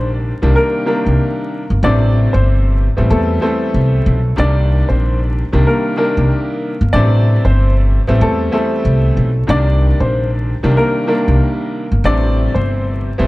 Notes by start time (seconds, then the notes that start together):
Already playing: A#1 C3 D#3 G3 A#3 D4
0.42 C2 C3 D#3 G3 A#3 D4
0.56 A#3 A#4
0.86 C3 D#3 G3 A#3 D4 A#4
1.06 C2
1.70 G1
1.83 A1 C3 E3 G3 A3 C4 D4 D5
2.33 G1 C4 C5
2.97 A1 E3 G3 A3 B3 C4
3.10 E2 A3 A4
3.41 E3 G3 A3 B3 C4 A4
3.74 C2
4.06 B1
4.36 C2 C3 D#3 G3 A#3 D4 D5
4.89 A#1 C4 C5
5.53 C2 C3 D#3 G3 A#3 D4
5.67 A#3 A#4
5.97 C3 D#3 G3 A#3 D4 A#4
6.17 C2
6.81 G1
6.93 A1 C3 E3 G3 A3 C4 D4 D5
7.45 G1 C4 C5
8.07 A1 E3 G3 A3 B3 C4
8.21 E2 A3 A4
8.52 E3 G3 A3 B3 C4 A4
8.85 C2
9.17 B1
9.47 C2 C3 D#3 G3 A#3 D4 D5
10.00 A#1 C4 C5
10.63 C2 C3 D#3 G3 A#3 D4
10.77 A#3 A#4
11.07 C3 D#3 G3 A#3 D4 A#4
11.28 C2
11.92 G1
12.04 A1 C3 E3 G3 A3 C4 D4 D5
12.54 G1 C4 C5
13.18 A1 E3 G3 A3 B3 C4